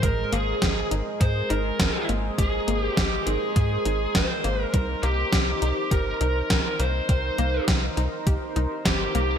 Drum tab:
HH |xxxxxxxx|xxxxxxxx|xxxxxxxx|xxxxxxxx|
SD |--o---o-|--o---o-|--o---o-|--o---o-|
BD |o-o-o-o-|o-o-o-o-|o-o-o-o-|o-o-o-o-|